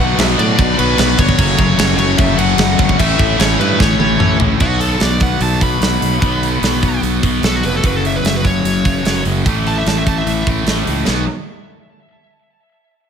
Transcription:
Already playing: fingered electric bass B1, overdriven electric guitar B2 F#3 B3, distorted electric guitar B2 F#3 B3, tonewheel organ B4 F#5 D6
0.00 distorted electric guitar B2 F#3 B3 D4 F#4, lead electric guitar F#5
0.18 fingered electric bass B1, distorted electric guitar B2 F#3 B3 D4 F#4, lead electric guitar E5, snare, crash
0.38 fingered electric bass A2, distorted electric guitar B2 F#3 B3 D4 F#4, lead electric guitar D5, crash
0.58 fingered electric bass B1, overdriven electric guitar B2 F#3 B3, distorted electric guitar B2 F#3 B3 D4 F#4, kick, crash
0.78 fingered electric bass B1, distorted electric guitar B2 F#3 B3 D4 F#4, lead electric guitar B4, crash
0.97 fingered electric bass B1, distorted electric guitar B2 F#3 B3 D4 F#4, lead electric guitar B4, snare, crash
1.18 fingered electric bass G1, distorted electric guitar B2 F#3 B3 D4 F#4, lead electric guitar C#5, kick, crash
1.29 kick
1.37 fingered electric bass F#1, distorted electric guitar F#2 C#3 F#3 A3 C#4 F#4, overdriven electric guitar F#2 C#3 F#3, tonewheel organ A4 F#5 C#6, kick, crash
1.58 fingered electric bass F#1, distorted electric guitar F#3 A3 C#4 F#4, kick, crash
1.77 fingered electric bass F#1, distorted electric guitar F#3 A3 C#4 F#4, snare, crash
1.97 fingered electric bass F#1, distorted electric guitar F#3 A3 C#4 F#4, lead electric guitar C#5, crash
2.18 fingered electric bass F#1, overdriven electric guitar F#2 C#3 F#3, distorted electric guitar F#3 A3 C#4 F#4, lead electric guitar E5, kick, crash
2.38 fingered electric bass F#1, distorted electric guitar F#2 C#3 F#3 A3 C#4 F#4, lead electric guitar F#5, crash
2.58 fingered electric bass F#1, distorted electric guitar F#2 C#3 F#3 A3 C#4 F#4, snare, crash
2.79 fingered electric bass G1, distorted electric guitar F#3 A3 C#4 F#4, kick, crash
2.89 kick
2.98 fingered electric bass A1, distorted electric guitar A2 E3 A3 C#4 E4, overdriven electric guitar A2 E3 A3, tonewheel organ A4 E5, lead electric guitar E5, kick, crash
3.19 fingered electric bass A1, distorted electric guitar A2 E3 A3 C#4 E4, lead electric guitar E5, kick, crash
3.39 fingered electric bass A1, distorted electric guitar A2 E3 A3 C#4 E4, lead electric guitar C#5, snare, crash
3.59 fingered electric bass G2, distorted electric guitar A2 E3 A3 C#4 E4, lead electric guitar B4, crash
3.78 fingered electric bass A1, distorted electric guitar A2 E3 A3 C#4 E4, overdriven electric guitar A2 E3 A3, lead electric guitar C#5, kick, snare
3.99 fingered electric bass A1, distorted electric guitar A2 E3 A3 C#4 E4, high tom
4.18 fingered electric bass A1, distorted electric guitar A2 E3 A3 C#4 E4, mid tom
4.39 fingered electric bass A1, distorted electric guitar A2 E3 A3 C#4 E4, floor tom
4.58 fingered electric bass B1, distorted electric guitar B2 F#3 B3, overdriven electric guitar B2 F#3, lead electric guitar F#4, kick, crash
4.63 overdriven electric guitar B3
4.81 lead electric guitar A4, open hi-hat
5.00 fingered electric bass B1, lead electric guitar D5, snare, open hi-hat
5.19 distorted electric guitar B2 F#3 B3, lead electric guitar F#5, kick, open hi-hat
5.40 fingered electric bass B1, lead electric guitar A5, open hi-hat
5.61 overdriven electric guitar B2 F#3 B3, lead electric guitar B5, kick, open hi-hat
5.81 fingered electric bass B1, overdriven electric guitar B2 F#3 B3, lead electric guitar B5, snare, open hi-hat
6.01 fingered electric bass B1, open hi-hat
6.19 fingered electric bass B1, distorted electric guitar B2 F#3 B3, overdriven electric guitar B2, kick, open hi-hat
6.24 overdriven electric guitar F#3 B3
6.43 open hi-hat
6.62 fingered electric bass B1, snare, open hi-hat
6.80 distorted electric guitar B2 F#3 B3, kick, open hi-hat
7.02 fingered electric bass B1, open hi-hat
7.23 fingered electric bass B1, overdriven electric guitar B2 F#3 B3, kick, open hi-hat
7.43 fingered electric bass B1, overdriven electric guitar B2 F#3 B3, lead electric guitar A4, snare, open hi-hat
7.56 lead electric guitar F#4
7.63 fingered electric bass F1, lead electric guitar B4, open hi-hat
7.77 lead electric guitar A4
7.82 fingered electric bass F#1, distorted electric guitar F#2 C#3 F#3, overdriven electric guitar F#2 C#3, lead electric guitar B4, kick, open hi-hat
7.86 overdriven electric guitar F#3
7.96 lead electric guitar A4
8.05 lead electric guitar E5, open hi-hat
8.16 lead electric guitar B4
8.24 fingered electric bass F#1, lead electric guitar E5, snare, open hi-hat
8.36 lead electric guitar B4
8.43 distorted electric guitar F#2 C#3 F#3, lead electric guitar C#5, kick, open hi-hat
8.64 fingered electric bass F#1, open hi-hat
8.85 overdriven electric guitar F#2 C#3 F#3, kick, open hi-hat
9.03 fingered electric bass F#1, overdriven electric guitar F#2 C#3 F#3, snare, open hi-hat
9.25 fingered electric bass F#1, open hi-hat
9.44 fingered electric bass A1, distorted electric guitar A2 E3 A3, overdriven electric guitar A2 E3 A3, kick, open hi-hat
9.67 lead electric guitar A5, open hi-hat
9.78 lead electric guitar E5
9.86 fingered electric bass A1, lead electric guitar A5, snare, open hi-hat
9.98 lead electric guitar E5
10.05 distorted electric guitar A2 E3 A3, lead electric guitar A5, kick, open hi-hat
10.18 lead electric guitar E5
10.26 fingered electric bass A1, lead electric guitar E5, open hi-hat
10.46 fingered electric bass A1, overdriven electric guitar A2 E3 A3, kick, open hi-hat
10.66 fingered electric bass A1, overdriven electric guitar A2 E3 A3, snare, open hi-hat
10.87 fingered electric bass C#2, open hi-hat
11.05 fingered electric bass B1, distorted electric guitar B2 F#3 B3, overdriven electric guitar B2 F#3 B3, snare, ride bell

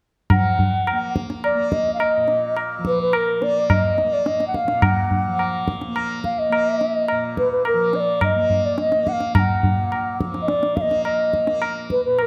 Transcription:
0.30 tanpura F3, bansuri F#5, tabla na, tabla ge
0.59 tabla ge
0.87 tabla na
0.92 tanpura A#3
1.16 tabla ke
1.30 tabla te
1.44 bansuri D5, tabla na
1.54 tanpura A#3
1.72 bansuri D#5, tabla ke
1.94 bansuri F5
2.00 bansuri D#5, tabla na
2.17 tanpura A#2
2.28 tabla te
2.57 tabla na
2.78 tanpura F3
2.85 bansuri B4, tabla ke
3.01 bansuri B4
3.13 bansuri A#4, tabla na
3.40 tanpura A#3, bansuri D5, tabla te
3.70 bansuri D#5, tabla na, tabla ge
3.98 tabla te
4.03 tanpura A#3
4.13 bansuri D5
4.26 bansuri D#5, tabla te
4.40 tabla te
4.47 bansuri F#5
4.54 bansuri F5, tabla ke
4.64 tanpura A#2, tabla te
4.82 bansuri F#5, tabla na, tabla ge
5.11 tabla ge
5.27 tanpura F3
5.39 tabla na
5.68 tabla ke
5.81 tabla te
5.88 tanpura A#3
5.96 tabla na
6.24 bansuri F5, tabla ke
6.39 bansuri D#5
6.50 tanpura A#3, tabla na
6.81 tabla te
7.08 tanpura A#2, tabla na
7.37 bansuri B4, tabla ke
7.52 bansuri B4
7.65 bansuri A#4, tabla na
7.73 tanpura F3
7.93 bansuri D#5, tabla te
8.00 bansuri D5
8.21 bansuri D#5, tabla na, tabla ge
8.36 tanpura A#3
8.50 tabla ge
8.65 bansuri D5
8.78 bansuri D#5, tabla te
8.92 tabla te
8.98 tanpura A#3
9.07 bansuri F#5, tabla ke
9.12 bansuri F5
9.20 tabla te
9.35 bansuri A5, tabla na, tabla ge
9.39 bansuri F#5
9.59 tanpura A#2
9.63 tabla ge
9.92 tabla na
10.21 tanpura F3, tabla ke
10.34 tabla te
10.42 bansuri D#5
10.48 bansuri D5, tabla te
10.63 tabla te
10.76 bansuri F5, tabla ke
10.81 tanpura A#3, bansuri D#5
10.91 tabla te
11.05 bansuri D#5, tabla na
11.33 tabla ke
11.46 tanpura A#3, tabla te
11.62 tabla na
11.90 bansuri B4, tabla ke
12.05 tanpura A#2, bansuri B4
12.19 bansuri A#4 B4, tabla na

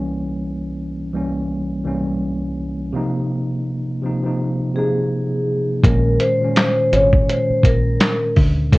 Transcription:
Already playing: tine electric piano C2 E3 G3 A#3 C#4
1.12 tine electric piano C2 E3 G3 A#3
1.16 tine electric piano C#4
1.84 tine electric piano C2 E3 G3 A#3 C#4
2.92 tine electric piano C3 F3 A#3 D#4
4.02 tine electric piano C3 F3 A#3 D#4
4.22 tine electric piano C3 F3 A#3 D#4
4.75 tine electric piano C3 F3 A#3 D#4, vibraphone G#4
5.84 fingered electric bass A#1, tine electric piano A#2 D#3 G#3, vibraphone A#4, kick, closed hi-hat
5.88 tine electric piano C#4
6.20 vibraphone C5, closed hi-hat
6.40 tine electric piano A#2 D#3 G#3 C#4
6.56 vibraphone C5, snare, clap, closed hi-hat
6.92 fingered electric bass G#1, tine electric piano A#2 D#3 G#3 C#4, vibraphone C#5, closed hi-hat
7.13 kick
7.29 vibraphone C5, closed hi-hat
7.50 muted fingered electric bass stroke
7.63 fingered electric bass A#1, vibraphone A#4, kick, closed hi-hat
8.00 snare, clap, closed hi-hat
8.36 fingered electric bass D2, kick, open hi-hat
8.72 fingered electric bass C#2, tine electric piano B2 E3 A3, vibraphone A4, kick, closed hi-hat

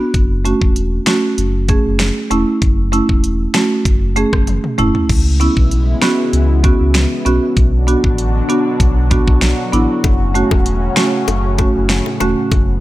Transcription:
0.14 sub bass F#1, kick, closed hi-hat
0.45 marimba A3 C#4 F#4, closed hi-hat
0.62 sub bass E1, kick
0.76 closed hi-hat
1.06 marimba A3 C#4 F#4, finger snap, snare, closed hi-hat
1.38 sub bass F#1, closed hi-hat
1.68 marimba A3 C#4 G#4, kick, closed hi-hat
1.85 sub bass F#1
1.99 finger snap, snare, closed hi-hat
2.30 sub bass E1, marimba A3 C#4 E4, closed hi-hat
2.62 sub bass F#1, kick, closed hi-hat
2.92 marimba A3 C#4 E4, closed hi-hat
3.09 sub bass E1, kick
3.24 closed hi-hat
3.54 marimba A3 C#4 F#4, finger snap, snare, closed hi-hat
3.85 sub bass F#1, kick, closed hi-hat
4.16 marimba A3 C#4 G#4, closed hi-hat
4.33 sub bass F#1, kick, cross-stick
4.47 closed hi-hat, high tom
4.64 mid tom
4.78 sub bass E1, marimba A3 C#4 E4, closed hi-hat, mid tom
4.95 floor tom
5.09 sub bass C#2, analog synth pad C#3 E3 G#3 B3 E4, kick, closed hi-hat, crash
5.40 marimba B3 C#4 E4, closed hi-hat
5.57 sub bass B1, kick
5.71 closed hi-hat
6.02 marimba B3 C#4 F#4, finger snap, snare, closed hi-hat
6.33 sub bass C#2, closed hi-hat
6.63 marimba B3 C#4 F#4, kick, closed hi-hat
6.80 sub bass C#2
6.94 finger snap, snare, closed hi-hat
7.25 sub bass B1, marimba B3 C#4 F#4, closed hi-hat
7.57 sub bass B1, analog synth pad B2 D3 F#3 D4 F#4, kick, closed hi-hat
7.87 marimba B3 D4 F#4, closed hi-hat
8.04 sub bass A1, kick
8.18 closed hi-hat
8.49 marimba B3 D4 F#4, closed hi-hat
8.80 sub bass B1, kick, closed hi-hat
9.11 marimba B3 D4 F#4, kick, closed hi-hat
9.28 sub bass B1, kick
9.41 finger snap, snare, closed hi-hat
9.73 sub bass A1, marimba B3 D4 E4, closed hi-hat
10.04 sub bass F#1, analog synth pad A2 C#3 C#4, kick, closed hi-hat, high bongo
10.34 marimba A3 C#4 F#4, closed hi-hat
10.51 sub bass E1, kick, high bongo
10.66 closed hi-hat
10.96 marimba A3 C#4 F#4, finger snap, snare, closed hi-hat, high bongo
11.28 sub bass F#1, closed hi-hat, high bongo
11.58 marimba A3 C#4 F#4, kick, closed hi-hat, high bongo
11.75 sub bass F#1
11.89 finger snap, snare, closed hi-hat
12.06 high bongo
12.20 sub bass E1, marimba A3 C#4 F#4, closed hi-hat, low bongo
12.51 sub bass F#1, analog synth pad B3, kick, closed hi-hat, high bongo

